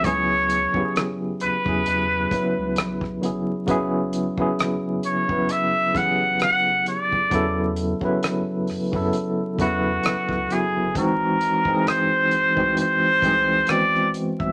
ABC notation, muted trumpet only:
X:1
M:4/4
L:1/16
Q:"Swing 16ths" 1/4=66
K:F#m
V:1 name="Muted trumpet"
c4- c z B8 z2 | z6 c2 e2 f2 f2 d2- | d2 z8 F4 G2 | ^A4 ^B4 B4 d2 z e |]